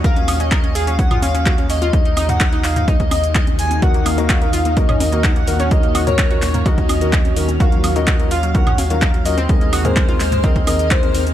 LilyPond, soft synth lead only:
\new Staff \with { instrumentName = "Soft synth lead" } { \time 4/4 \key ges \lydian \tempo 4 = 127 f''8. ees''8. f''8 ges''8 f''4 ees''8 | ees''8. ges''8. f''8 ees''8 ees''8 ees''8 aes''8 | ges''8 f''4. ees''8 ees''8 ges''4 | ees''8. des''8. des''8 ees''4. r8 |
f''8. ees''8. f''8 ges''8 f''4 ees''8 | ees''8. c''8. c''8 ees''8 ees''8 c''8. r16 | }